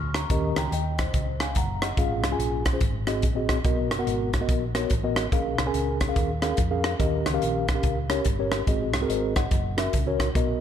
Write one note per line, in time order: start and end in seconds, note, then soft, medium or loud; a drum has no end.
0.00 0.24 D2 medium
0.00 0.14 C#6 medium
0.00 0.14 F6 medium
0.14 0.55 A#5 soft
0.14 0.55 C#6 medium
0.14 cross-stick loud
0.14 closed hi-hat medium
0.30 0.53 D#2 loud
0.30 0.95 D#3 medium
0.30 0.57 C#4 medium
0.30 0.58 G4 medium
0.30 0.58 A#4 medium
0.30 0.57 D#5 medium
0.30 kick loud
0.30 closed hi-hat medium
0.56 0.69 C#2 medium
0.56 0.72 G5 medium
0.56 0.71 A#5 medium
0.56 cross-stick loud
0.56 closed hi-hat medium
0.72 1.07 D#2 medium
0.72 0.98 D#5 soft
0.72 0.98 G5 medium
0.72 closed hi-hat medium
0.98 1.39 C5 soft
0.98 1.38 D#5 medium
0.98 kick medium
0.98 cross-stick medium
0.98 closed hi-hat medium
1.14 1.58 C#2 medium
1.14 1.78 C#3 medium
1.14 kick medium
1.14 closed hi-hat medium
1.40 1.56 F5 medium
1.40 1.55 G#5 medium
1.40 cross-stick medium
1.40 closed hi-hat medium
1.55 1.92 F#1 medium
1.55 1.82 F#5 medium
1.55 1.81 A#5 medium
1.55 kick medium
1.55 closed hi-hat medium
1.82 2.22 D#5 soft
1.82 2.22 F#5 medium
1.82 cross-stick loud
1.82 closed hi-hat medium
1.97 2.23 G#1 loud
1.97 2.62 G#2 medium
1.97 2.25 C#4 medium
1.97 2.25 F4 medium
1.97 2.25 G#4 medium
1.97 2.25 F5 medium
1.97 kick loud
1.97 closed hi-hat medium
2.23 2.36 C2 medium
2.23 cross-stick loud
2.23 closed hi-hat medium
2.31 2.63 C#4 medium
2.31 2.63 F4 medium
2.31 2.63 G#4 medium
2.31 2.63 G#5 medium
2.39 2.74 A#1 medium
2.39 closed hi-hat medium
2.65 kick medium
2.65 cross-stick loud
2.65 closed hi-hat medium
2.73 2.81 C#4 medium
2.73 2.81 F4 medium
2.73 2.81 G#4 medium
2.73 2.81 C5 medium
2.81 3.23 G#1 medium
2.81 3.45 G#2 medium
2.81 kick loud
2.81 closed hi-hat medium
3.07 3.24 C4 medium
3.07 3.24 F#4 medium
3.07 3.24 G#4 medium
3.07 3.24 D#5 medium
3.07 cross-stick medium
3.07 closed hi-hat medium
3.22 3.59 A#1 medium
3.22 kick medium
3.22 closed hi-hat medium
3.35 3.57 C4 medium
3.35 3.57 F#4 medium
3.35 3.58 G#4 medium
3.35 3.58 D#5 medium
3.49 kick medium
3.49 cross-stick loud
3.49 closed hi-hat medium
3.64 3.92 B1 medium
3.64 4.29 B2 medium
3.64 3.92 B3 medium
3.64 3.92 F#4 medium
3.64 3.92 A#4 medium
3.64 3.92 D#5 medium
3.64 kick loud
3.64 closed hi-hat medium
3.91 4.05 F#1 medium
3.91 cross-stick loud
3.91 closed hi-hat medium
3.99 4.30 B3 medium
3.99 4.30 F#4 medium
3.99 4.30 A#4 medium
3.99 4.30 F#5 medium
4.07 4.42 G#1 medium
4.07 closed hi-hat medium
4.33 kick medium
4.33 cross-stick loud
4.33 closed hi-hat medium
4.41 4.63 B3 medium
4.41 4.63 F#4 medium
4.41 4.63 A#4 medium
4.41 4.63 D#5 medium
4.49 4.84 A#1 medium
4.49 kick loud
4.49 closed hi-hat medium
4.75 4.91 B3 medium
4.75 4.91 F#4 medium
4.75 4.92 A#4 medium
4.75 4.92 C#5 medium
4.75 cross-stick medium
4.75 closed hi-hat medium
4.90 5.26 A1 medium
4.90 kick medium
4.90 closed hi-hat medium
5.03 5.25 B3 medium
5.03 5.25 F#4 medium
5.03 5.25 A#4 medium
5.03 5.25 D#5 medium
5.16 cross-stick loud
5.16 closed hi-hat medium
5.32 5.55 A#1 medium
5.32 5.97 A#2 medium
5.32 5.59 C#4 medium
5.32 5.60 G#4 medium
5.32 5.60 A#4 medium
5.32 5.60 F5 medium
5.32 kick loud
5.32 closed hi-hat medium
5.58 5.72 C2 medium
5.58 cross-stick loud
5.58 closed hi-hat medium
5.66 5.97 C#4 medium
5.66 5.98 G#4 medium
5.66 5.98 A#4 medium
5.66 5.98 G#5 medium
5.74 6.09 C#2 medium
5.74 closed hi-hat medium
6.01 kick medium
6.01 cross-stick medium
6.01 closed hi-hat medium
6.08 6.30 C#4 medium
6.08 6.30 G#4 medium
6.08 6.30 A#4 medium
6.08 6.30 F5 medium
6.16 6.52 D#2 medium
6.16 kick medium
6.16 closed hi-hat medium
6.42 6.59 C#4 medium
6.42 6.59 G#4 medium
6.42 6.59 A#4 medium
6.42 6.59 F5 medium
6.42 cross-stick medium
6.42 closed hi-hat medium
6.57 6.94 F2 medium
6.57 kick medium
6.57 closed hi-hat medium
6.71 6.92 C#4 medium
6.71 6.92 G#4 medium
6.71 6.93 A#4 medium
6.71 6.93 F5 medium
6.84 cross-stick loud
6.84 closed hi-hat medium
6.99 7.22 D#2 loud
6.99 7.64 D#3 medium
6.99 7.27 C#4 medium
6.99 7.27 G4 medium
6.99 7.27 A#4 medium
6.99 7.27 D#5 medium
6.99 kick loud
6.99 closed hi-hat medium
7.26 7.40 C#2 medium
7.26 cross-stick loud
7.26 closed hi-hat medium
7.33 7.65 C#4 medium
7.33 7.65 G4 medium
7.33 7.65 A#4 medium
7.33 7.65 F5 medium
7.42 7.78 A#1 medium
7.42 closed hi-hat medium
7.68 kick medium
7.68 cross-stick medium
7.68 closed hi-hat medium
7.75 7.97 C#4 medium
7.75 7.97 G4 medium
7.75 7.97 A#4 medium
7.75 7.97 F5 medium
7.83 8.19 C#2 medium
7.83 kick loud
7.83 closed hi-hat medium
8.09 8.26 C#4 medium
8.09 8.26 G4 medium
8.09 8.26 A#4 medium
8.09 8.27 C#5 medium
8.09 cross-stick medium
8.09 closed hi-hat medium
8.25 8.61 G1 medium
8.25 kick medium
8.25 closed hi-hat medium
8.39 8.60 C#4 medium
8.39 8.60 G4 medium
8.39 8.61 A#4 medium
8.39 8.61 C#5 medium
8.52 cross-stick loud
8.52 closed hi-hat medium
8.67 8.94 G#1 medium
8.67 9.32 G#2 medium
8.67 8.95 C4 medium
8.67 8.95 F#4 medium
8.67 8.95 G#4 medium
8.67 8.95 D#5 medium
8.67 kick loud
8.67 closed hi-hat medium
8.94 9.07 C2 medium
8.94 cross-stick loud
8.94 closed hi-hat medium
9.01 9.32 C4 medium
9.01 9.32 F#4 medium
9.01 9.33 G#4 medium
9.01 9.33 A#4 medium
9.09 9.45 G#1 medium
9.09 9.35 C5 soft
9.09 9.35 D#5 medium
9.09 closed hi-hat medium
9.36 9.76 D#5 soft
9.36 9.76 F#5 medium
9.36 kick medium
9.36 cross-stick medium
9.36 closed hi-hat medium
9.51 9.87 F#1 medium
9.51 kick loud
9.51 closed hi-hat medium
9.77 9.94 C#4 medium
9.77 9.94 F#4 medium
9.77 9.94 A#4 medium
9.77 9.94 E5 medium
9.77 cross-stick medium
9.77 closed hi-hat medium
9.93 10.29 C#2 medium
9.93 kick medium
9.93 closed hi-hat medium
10.07 10.28 C#4 medium
10.07 10.28 F#4 medium
10.07 10.28 A#4 medium
10.07 10.28 C#5 medium
10.20 kick medium
10.20 cross-stick loud
10.20 closed hi-hat medium
10.35 10.58 B1 medium
10.35 10.61 B2 medium
10.35 10.61 B3 medium
10.35 10.61 F#4 medium
10.35 10.61 A#4 medium
10.35 10.61 D#5 medium
10.35 kick loud
10.35 closed hi-hat medium